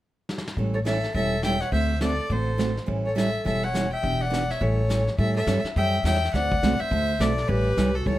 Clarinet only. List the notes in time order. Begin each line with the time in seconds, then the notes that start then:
0.75 A4
0.86 A4
1.15 A4
1.44 E5
1.61 C#5
1.73 C5
2.02 A4
2.30 A4
3.06 A4
3.17 A4
3.47 A4
3.64 C#5
3.93 E5
4.22 D5
4.50 C#5
4.62 A4
5.19 A4
5.37 A4
5.77 E5
6.06 E5
6.35 D5
6.81 C5
7.22 A4
7.51 G4
7.97 F#4
8.07 A4